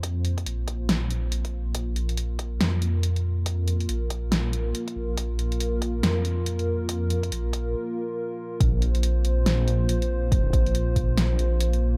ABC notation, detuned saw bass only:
X:1
M:4/4
L:1/8
Q:"Swing 16ths" 1/4=140
K:Cphr
V:1 name="Detuned saw bass" clef=bass
F,,2 B,,,6 | B,,,4 F,,4- | F,,2 B,,,4 z B,,, | B,,,4 F,,4- |
F,,2 B,,,2 z4 | B,,,4 B,,,2 B,,,2- | B,,, B,,,4 B,,,3 |]